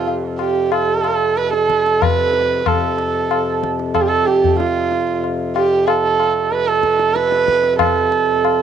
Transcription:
Already playing: F2 C3
0.08 tabla tin
0.39 G4, tabla na
0.71 A4, tabla na
1.04 tabla na
1.36 B4, tabla te
1.53 A4, tabla te
1.70 tabla ke
1.86 tabla te
2.02 B4, tabla na, tabla ge
2.33 tabla te
2.64 F2 C3 A4, tabla na, tabla ge
2.98 tabla te
3.31 tabla na
3.63 tabla ke
3.79 tabla te
3.94 A4, tabla na, tabla ge
4.01 G4
4.08 A4
4.26 G4, tabla te
4.44 tabla ge
4.59 F4, tabla te
4.92 tabla te
5.24 tabla tin
5.56 G4, tabla na
5.87 A4, tabla na
6.20 tabla na
6.52 B4, tabla te
6.68 A4, tabla te
6.83 tabla ke
6.99 tabla te
7.15 B4, tabla te
7.32 tabla te
7.48 tabla ke
7.64 tabla te
7.79 A4, tabla na, tabla ge
8.12 tabla te
8.45 tabla na

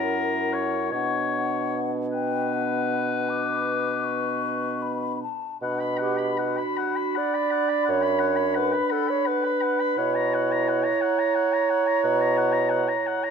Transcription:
Already playing: F#2 C#4 E4 A#4 F#5
0.53 C#5
0.91 B2 B3 D4 C#5 F#5
2.11 B4 G5
2.53 F#5
3.29 D6
4.04 C#6
4.82 B5
5.23 A5
5.62 B2 D4 F#5 B5
5.80 B5
5.98 G4 F#5
6.18 B5
6.38 F#4 F#5
6.57 B5
6.77 F#5
6.96 B5
7.15 D5 F#5
7.34 B5
7.51 F#5
7.69 B5
7.85 F#2 F#5
7.90 C#5
8.02 B5
8.19 F#5
8.36 B5
8.55 B4 F#5
8.73 B5
8.90 A4 F#5
9.08 C#5 B5
9.26 B4 F#5
9.44 B5
9.62 F#5
9.80 B5
9.97 B2 E4 C#5 F#5
10.15 A#5
10.34 F#5
10.52 A#5
10.68 F#5
10.83 A#5
11.01 F#5 A#5
11.19 A#5
11.35 F#5
11.53 A#5
11.70 F#5
11.87 A#5
12.03 B2 F#5
12.21 A#5
12.37 F#5
12.53 A#5
12.70 F#5
12.88 A#5
13.07 F#5
13.24 A#5

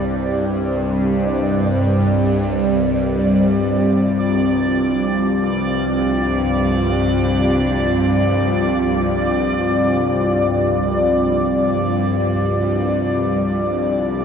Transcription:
Already playing: C2 G2 G3 C4 G4 C5 D5
1.51 F4
4.35 D5

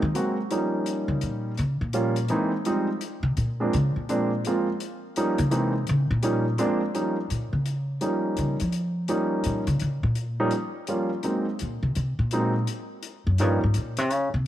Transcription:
0.02 D#3
0.15 F#3 G#3 A#3 C4 F#4, closed hi-hat
0.51 F3 G3 A#3 C#4 D#4, closed hi-hat
0.86 closed hi-hat
1.08 C#3
1.21 A#2, closed hi-hat
1.57 C#3, closed hi-hat
1.81 A#2
1.93 F3 G3 A#3 C#4 F4, closed hi-hat
2.16 closed hi-hat
2.28 E3 G#3 A#3 C4 D#4, closed hi-hat
2.65 F3 G3 G#3 C4 D#4, closed hi-hat
3.01 closed hi-hat
3.23 C3
3.37 A#2, closed hi-hat
3.60 F3 G#3 A#3 C4 D4
3.73 C#3, closed hi-hat
3.96 A#2
4.09 F3 G#3 A#3 C4 D4, closed hi-hat
4.45 F3 G#3 A#3 C4 F4, closed hi-hat
4.80 closed hi-hat
5.16 F3 G3 A#3 C#4 D#4, closed hi-hat
5.38 C#3, closed hi-hat
5.51 C3 E3 G#3 A#3 C4 D#4, closed hi-hat
5.87 C#3, closed hi-hat
6.11 A#2
6.23 F3 G3 A#3 C#4 D#4, closed hi-hat
6.58 F3 G#3 A#3 C4 D4, closed hi-hat
6.95 F3 G3 A#3 C#4 D#4, closed hi-hat
7.30 A#2, closed hi-hat
7.53 C#3
7.66 closed hi-hat
8.01 F3 G3 A#3 C#4 D#4, closed hi-hat
8.37 C#3, closed hi-hat
8.60 F3, closed hi-hat
8.72 closed hi-hat
9.08 F3 G3 A#3 C#4 D#4, closed hi-hat
9.44 A#2, closed hi-hat
9.67 C#3, closed hi-hat
9.80 C#3, closed hi-hat
10.03 A#2
10.15 closed hi-hat
10.40 F3 G3 A#3 C#4 D#4
10.51 closed hi-hat
10.87 F3 G3 A#3 C#4 F4, closed hi-hat
11.23 F#3 G#3 A#3 C4 D#4, closed hi-hat
11.59 A#2, closed hi-hat
11.83 C3
11.95 C3, closed hi-hat
12.19 A#2
12.31 F#3 G#3 A#3 C4 D#4, closed hi-hat
12.67 closed hi-hat
13.03 closed hi-hat
13.27 F#2
13.38 G2 F3 G3 A#3 C#4 D#4, closed hi-hat
13.64 G#2
13.74 A#2, closed hi-hat
13.97 C3, closed hi-hat
14.11 C#3, closed hi-hat
14.34 C3

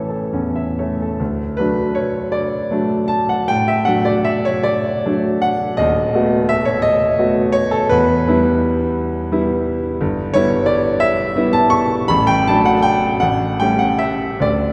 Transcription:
Already playing: A1 E3 A3 C#4 A4 C#5 E5 A5
0.09 A4
0.33 E2 C#4
0.56 E5
0.79 A3 C#5
1.02 A4
1.20 D2
1.57 F#3 A3 D4 B4
1.95 C#5
2.32 D5
2.71 F#3 A3 D4
3.08 A5
3.29 F#5
3.48 A2 G5
3.68 E5
3.85 F#3 A3 D4 F#5
4.05 D5
4.25 E5
4.45 C#5
4.63 D5
5.06 F#3 A3 D4
5.42 F#5
5.77 D#1 D#2 D#5
6.15 A3 B3 F#4
6.49 E5
6.65 C#5
6.82 D#5
7.19 A3 B3 F#4
7.52 C#5
7.71 A4
7.89 E2 B4
8.27 G3 B3 E4
9.31 G3 B3 E4
10.01 G1
10.34 G3 B3 E4 C#5
10.66 D5
11.00 E5
11.36 G3 B3 E4
11.53 A5
11.70 C#6
12.08 A1 B5
12.27 G5
12.47 F#3 A3 D4 A5
12.65 F#5
12.82 G5
13.20 A1 F#5
13.60 G3 A3 C#4 G5
13.79 F#5
13.99 E5
14.40 D2 D5

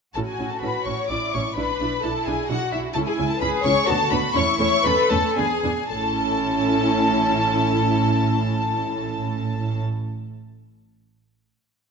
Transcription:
0.14 A1 C#4 E4 F#4 A4 A5
0.27 G#4 G#5
0.39 A1 C#4 E4
0.50 A4 A5
0.61 A1 C#4 E4 B4 B5
0.85 A1 C#4 E4 C#5 C#6
1.09 A1 C#4 E4 D5 D6
1.33 A1 C#4 E4 C#5 C#6
1.56 B1 D4 E4 B4 B5
1.80 B1 D4 E4
2.02 B1 D4 E4 A4 A5
2.25 B1 D4 E4 G#4 G#5
2.49 B1 D4 E4 F#4 F#5
2.71 B1 D4 E4 E5
2.94 C#2 C#4 E4 A4 A5
3.06 G#4 G#5
3.18 C#2 C#4 E4
3.29 A4 A5
3.40 C#2 C#4 E4 G#4 B4 B5
3.64 C#2 C#4 E4 C#5 C#6
3.88 D2 B3 D4 F#4 A4 A5
4.11 D2 B3 D4 B4 B5
4.35 E2 A3 C#4 E4 C#5 C#6
4.59 E2 A3 C#4 C#5 C#6
4.84 E2 A3 C#4 A4 B4 B5
5.10 E2 A3 C#4 A4 A5
5.36 E2 B3 D4 G#4 G#5
5.63 E2 B3 D4
5.90 A1 A2 C#4 E4 A4 A5

